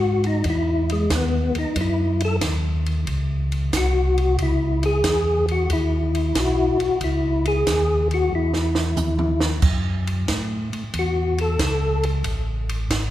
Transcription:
Already playing: G#2 F#4
0.24 D#4, ride
0.44 E2, kick, ride
0.50 E4
0.89 G#3, ride
1.10 D#2, kick, snare, hi-hat pedal, ride
1.15 B3
1.55 D#2 D#4, ride
1.76 F#2, kick, ride
1.81 E4
2.20 ride
2.25 A4
2.41 D#2, kick, snare, hi-hat pedal, ride
2.86 ride
3.07 C#2, kick, ride
3.52 ride
3.73 C2, kick, snare, hi-hat pedal, ride
3.77 F#4
4.18 ride
4.38 C#2 E4, kick, ride
4.83 G#4, ride
5.04 E2, kick, snare, hi-hat pedal, ride
5.48 F#4, ride
5.70 D#2 E4, kick, ride
6.15 ride
6.35 B1, kick, snare, hi-hat pedal, ride
6.39 F#4
6.80 B1, ride
7.01 C#2 E4, kick, ride
7.45 G#4, ride
7.66 D#2, kick, snare, hi-hat pedal, ride
8.11 F#4, ride
8.32 E2 E4
8.54 snare
8.75 snare
8.96 D#2, hi-hat pedal, mid tom
9.19 mid tom
9.40 snare
9.62 F#2, kick, crash
10.07 ride
10.28 A2, kick, snare, hi-hat pedal, ride
10.73 A2, ride
10.94 E2, kick, ride
10.99 F#4
11.38 A4, ride
11.59 C#2, kick, snare, hi-hat pedal, ride
11.63 A4
12.03 ride
12.24 A1, kick, ride
12.69 ride
12.90 G#1, kick, snare, hi-hat pedal, ride

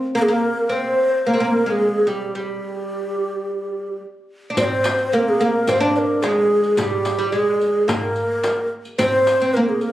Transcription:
0.15 A#3 A#4
0.22 G#4
0.28 A#3 A#4
0.69 C4 C5
1.27 A#3 A#4
1.33 C4
1.40 A#3
1.66 G#3 A#4
1.71 G#4
2.07 G3 G4
2.35 G3 G4
4.50 D4
4.57 C4 D5, riq, darbuka dum
4.64 C5
4.84 riq, darbuka tek
4.99 riq
5.12 A#3 A#4, riq, darbuka ka
5.29 G#4
5.40 A#3 A#4, riq, darbuka ka
5.67 C4 C5, riq, darbuka dum
5.80 D4 D5
5.95 A#4, riq
6.22 G#3 G#4, riq, darbuka tek
6.64 riq
6.77 G3 G#4, riq, darbuka dum
6.84 G4
7.05 riq, darbuka tek
7.19 G3, riq
7.32 G#3 G#4, riq, darbuka ka
7.61 riq, darbuka ka
7.88 A#3 A#4, riq, darbuka dum
8.16 riq
8.44 riq, darbuka tek
8.85 riq
8.98 C4 C5, riq, darbuka dum
9.27 riq, darbuka tek
9.40 C4, riq
9.54 A#3 A#4, riq, darbuka ka
9.69 G#4
9.81 A#4, riq, darbuka ka

